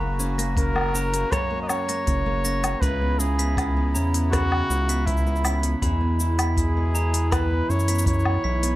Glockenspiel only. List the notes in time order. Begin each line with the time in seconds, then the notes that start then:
0.38 A#6
0.95 A#5
1.33 A#5
1.89 A#6
2.45 A#6
2.83 B5
3.39 B6
3.94 A#5
4.32 B5
4.89 B6
5.45 B6
5.82 B5
6.39 B6
6.95 A#5
7.32 B5
7.88 B6
8.44 B6